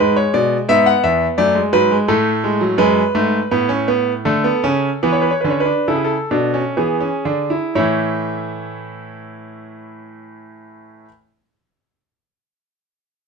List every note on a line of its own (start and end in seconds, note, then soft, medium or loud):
0.00 0.21 G#2 medium
0.00 0.67 G#3 medium
0.00 0.16 B4 medium
0.16 0.33 C#5 medium
0.34 0.56 B2 medium
0.34 0.56 D5 medium
0.69 0.90 G#2 medium
0.69 1.37 B3 medium
0.69 0.86 E5 loud
0.86 1.03 F#5 medium
1.03 1.25 E2 medium
1.03 1.25 E5 medium
1.38 1.60 F#2 medium
1.38 1.55 A3 medium
1.38 1.60 D5 loud
1.55 1.73 G#3 medium
1.73 1.95 G#2 medium
1.73 1.90 F#3 medium
1.73 1.95 B4 loud
1.91 2.08 G#3 medium
2.08 2.77 A2 medium
2.08 2.30 A3 medium
2.08 2.77 A4 medium
2.44 2.61 G#3 medium
2.61 2.78 F#3 medium
2.78 3.00 F#2 medium
2.78 3.01 G#3 loud
2.78 4.21 B4 medium
3.15 3.37 G#2 medium
3.15 3.37 A3 medium
3.51 4.23 A2 medium
3.51 3.69 B3 medium
3.69 3.87 C#4 medium
3.88 4.11 B3 medium
4.25 4.49 D3 medium
4.25 4.44 A3 medium
4.25 5.01 A4 medium
4.44 4.63 B3 medium
4.64 4.88 C#3 medium
4.64 4.88 C#4 loud
5.03 5.29 E3 medium
5.03 5.28 B3 medium
5.03 5.12 B4 medium
5.12 5.22 C#5 medium
5.22 5.31 B4 medium
5.31 5.41 C#5 medium
5.41 5.71 D3 medium
5.41 5.65 C#4 medium
5.41 5.50 B4 medium
5.50 5.60 C#5 medium
5.60 5.86 B4 medium
5.66 5.86 D4 medium
5.88 6.15 C#3 medium
5.88 6.15 E4 medium
5.88 5.96 A4 medium
5.96 6.04 G#4 medium
6.04 6.75 A4 medium
6.31 6.59 B2 medium
6.31 6.53 D4 medium
6.54 6.76 C#4 medium
6.77 7.07 E3 medium
6.77 7.00 B3 medium
6.77 7.72 G#4 medium
7.00 7.24 C#4 medium
7.25 7.56 D3 medium
7.25 7.49 D4 medium
7.50 7.74 E4 medium
7.75 11.05 A2 medium
7.75 11.08 E3 medium
7.75 11.08 A3 medium
7.75 11.05 E4 medium
7.75 11.05 C#5 medium